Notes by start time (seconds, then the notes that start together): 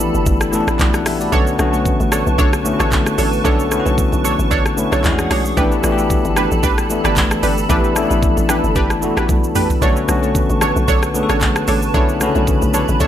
Already playing: A1 E3 A3 B3 D4 E4 F#4 G4 A4 A5 B5
0.00 low conga, shaker
0.14 G1, shaker
0.26 G1, kick, shaker
0.41 cross-stick, shaker
0.52 E3 A3 B3 C#4 A4, high conga, shaker
0.61 D4
0.67 A1, cross-stick, shaker
0.79 B1 F#4 D5, kick, clap, high conga, low conga, shaker
0.94 A4 F#5, cross-stick, shaker
1.06 A1 G4 E5, cross-stick, open hi-hat, high conga, shaker
1.21 F#4 D5, shaker
1.31 B1 D3 A3 B3 C#4 D4 F#4 A4 B4 C#5 A5 C#6, kick, low conga, shaker
1.47 shaker
1.58 B1 D3 A3 B3 C#4 F#4, cross-stick, high conga, shaker
1.74 high conga, shaker
1.85 kick, low conga, shaker
2.00 A1, high conga, shaker
2.12 D4 A4 C#5, cross-stick, low conga, shaker
2.27 B1, shaker
2.38 B1 D4 A4 C#5, kick, shaker
2.53 cross-stick, shaker
2.64 D3 A3 B3 C#4 E4, high conga, shaker
2.73 F#4
2.79 A1 D4 A4 C#5, cross-stick, shaker
2.92 kick, clap, high conga, low conga, shaker
3.06 cross-stick, shaker
3.18 A1 D4 A4 C#5, open hi-hat, high conga, shaker
3.33 shaker
3.44 B1 D3 A3 B3 C#4 D4 A4 C#5, kick, low conga, shaker
3.60 shaker
3.70 D3 A3 B3 C#4 E4, cross-stick, high conga, shaker
3.80 F#4
3.86 B1, high conga, shaker
3.98 kick, low conga, shaker
4.12 B1, high conga, shaker
4.24 D4 A4 C#5, low conga, shaker
4.39 A1, shaker
4.51 A1 D4 A4 C#5, kick, shaker
4.66 cross-stick, shaker
4.77 D3 A3 B3 C#4 E4, high conga, shaker
4.92 B1 D4 A4 C#5, cross-stick, shaker
5.03 E2 E3 G#3 C#4 D4 E4 G#4 F#5, kick, clap, high conga, low conga, shaker
5.12 F#4
5.19 cross-stick, shaker
5.30 B1 D4 F#4 G#4 C#5, cross-stick, open hi-hat, high conga, shaker
5.45 shaker
5.56 A1 E3 A3 B3 D4 G4 A4 B4 A5 B5, kick, low conga, shaker
5.72 shaker
5.83 A1 E3 A3 B3 D4 F#4, cross-stick, high conga, shaker
5.92 G4
5.98 high conga, shaker
6.10 kick, low conga, shaker
6.25 G1, high conga, shaker
6.36 D4 G4 B4, cross-stick, low conga, shaker
6.52 A1, shaker
6.63 A1 D4 G4 B4, kick, shaker
6.78 cross-stick, shaker
6.89 E3 A3 B3 D4 E4, high conga, shaker
7.04 G1 D4 G4 B4, cross-stick, shaker
7.16 kick, clap, high conga, low conga, shaker
7.31 cross-stick, shaker
7.43 G1 D4 G4 B4, open hi-hat, high conga, shaker
7.58 shaker
7.69 A1 E3 A3 B3 D4 G4 A4 B4, kick, low conga, shaker
7.84 shaker
7.95 E3 A3 B3 C#4 E4, cross-stick, high conga, shaker
8.04 D4
8.11 A1, high conga, shaker
8.23 kick, low conga, shaker
8.37 A1, high conga, shaker
8.49 D4 G4 B4, cross-stick, low conga, shaker
8.64 G1, shaker
8.76 G1 D4 G4 B4, kick, shaker
8.90 cross-stick, shaker
9.01 E3 A3 B3 D4 F#4, high conga, shaker
9.17 A1 D4 G4 B4, cross-stick, shaker
9.29 B1, kick, high tom, high conga, low conga, shaker
9.44 shaker
9.55 A1 D4 G4 B4, mid tom, open hi-hat, high conga, shaker
9.70 floor tom, shaker
9.81 B1 D3 A3 B3 C#4 D4 F#4 A4 B4 C#5 A5 C#6, kick, low conga, shaker
9.97 shaker
10.08 B1 D3 A3 B3 C#4 F#4, cross-stick, high conga, shaker
10.23 high conga, shaker
10.35 kick, low conga, shaker
10.50 A1, high conga, shaker
10.61 D4 A4 C#5, cross-stick, low conga, shaker
10.76 B1, shaker
10.88 B1 D4 A4 C#5, kick, shaker
11.03 cross-stick, shaker
11.14 D3 A3 B3 C#4 G#4, high conga, shaker
11.23 A4
11.29 A1 D4 A4 C#5, cross-stick, shaker
11.41 kick, clap, high conga, low conga, shaker
11.56 cross-stick, shaker
11.68 A1 D4 A4 C#5, open hi-hat, high conga, shaker
11.82 shaker
11.94 B1 D3 A3 B3 C#4 D4 E4 A4 C#5 B5, kick, low conga, shaker
12.09 shaker
12.20 C#3 A3 B3 C#4 F#4, cross-stick, high conga, shaker
12.27 D3
12.35 B1, high conga, shaker
12.47 kick, low conga, shaker
12.62 B1, high conga, shaker
12.74 D4 A4 C#5, low conga, shaker
12.88 A1, shaker
13.00 A1 D4 A4 C#5 E5, kick, shaker